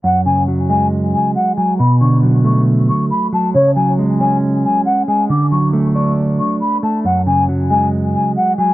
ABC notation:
X:1
M:4/4
L:1/8
Q:1/4=137
K:F#m
V:1 name="Flute"
f g z g z g f g | b c' z c' z c' b a | c g z g z g f g | d' c' z c' z c' b a |
f g z g z g f g |]
V:2 name="Clean electric guitar" clef=bass
F,, C, F, G,4 F, | B,, D, F, A,4 F, | C, F, G, C4 G, | D, F, A, D4 A, |
F,, C, F, G,4 F, |]